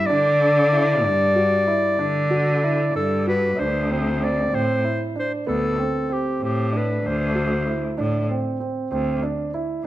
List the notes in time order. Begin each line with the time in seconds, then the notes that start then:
0.06 D3 D4 D5
0.73 E4
1.04 G2 D4
1.36 F#4
1.67 E4
1.99 D3 D4
2.31 F#4
2.63 E4
2.95 G2 D4 A4
3.27 F#4 B4
3.58 D2 D4 C5
3.90 C4 C5
4.21 C4 D5
4.52 A2 C4 C5
4.84 E4
5.16 D4 C5
5.47 D2 B3 A4
5.78 C4
6.09 C4 G4
6.41 A2 G4
6.72 D4
6.77 B4
7.04 D2 C5
7.35 F#4
7.67 E4
7.98 A2 D4
8.29 C4
8.60 C4
8.91 D2 C4
9.23 D4
9.54 E4